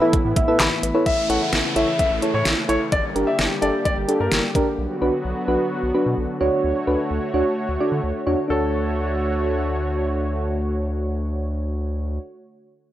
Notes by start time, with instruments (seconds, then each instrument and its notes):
Already playing: analog synth pad A2 E3 B3 E4, synth bell B5
0.01 synth keys E4 A4 B4 E5
0.13 analog synth bass A1, kick, closed hi-hat
0.25 analog synth bass A2
0.36 analog synth bass A1, synth keys B4 E5, kick, closed hi-hat
0.48 synth keys E4 A4 B4 E5
0.60 analog synth bass A1, synth keys B5, snare, clap, closed hi-hat
0.83 analog synth bass A1, synth keys B4 E5, closed hi-hat
0.94 synth keys E4 A4 B4 C#5
1.06 analog synth bass A1, analog synth pad C#3 E3 A3 E4, grand piano E5, kick, closed hi-hat, downlifter
1.29 analog synth bass A1, synth keys E4 A4 C#5, grand piano F#5, closed hi-hat
1.53 analog synth bass A1, snare, closed hi-hat
1.76 analog synth bass A1, synth keys E4 A4 C#5, grand piano E5, closed hi-hat
1.99 grand piano E5, kick, closed hi-hat
2.11 analog synth bass A1
2.22 synth keys E4 A4 C#5, closed hi-hat
2.34 analog synth bass A2, grand piano C#5
2.45 analog synth bass A1, snare, closed hi-hat
2.69 analog synth bass A1, synth keys E4 A4 C#5, grand piano C#5, closed hi-hat
2.92 analog synth bass G1, analog synth pad D3 G3 A#3 G4, grand piano D5, kick, closed hi-hat
3.15 analog synth bass G1, synth keys D4 G4 A#4, closed hi-hat
3.27 grand piano E5
3.39 analog synth bass G1, snare, closed hi-hat
3.62 analog synth bass G1, synth keys D4 G4 A4, grand piano D5, closed hi-hat
3.85 grand piano D5, kick, closed hi-hat
3.97 analog synth bass G1
4.08 synth keys D4 G4 A4, closed hi-hat
4.20 analog synth bass G2, grand piano A#4
4.32 analog synth bass G1, snare, closed hi-hat
4.55 analog synth bass A1, synth keys D4 G4 A#4, kick, closed hi-hat
4.78 analog synth bass B1, analog synth pad F#3 B3 F#4
5.02 analog synth bass B1, synth keys D4 F#4 B4
5.25 analog synth bass B1
5.48 analog synth bass B1, synth keys D4 F#4 B4
5.83 analog synth bass B1
5.94 synth keys D4 F#4 B4
6.06 analog synth bass B2
6.18 analog synth bass B1
6.41 analog synth bass D2, analog synth pad A3 F#4 C#5, synth keys D4 F#4 C#5
6.64 analog synth bass D2
6.87 analog synth bass D2, synth keys D4 F#4 B4
7.11 analog synth bass D2
7.34 analog synth bass D2, synth keys D4 F#4 C#5
7.69 analog synth bass D2
7.80 synth keys D4 F#4 D5
7.92 analog synth bass D3
8.04 analog synth bass D2
8.27 analog synth bass E2, synth keys D4 F#4 C#5
8.48 analog synth bass D2, analog synth pad D3 A3 F#4 C#5, synth keys D4 F#4 C#5, grand piano A4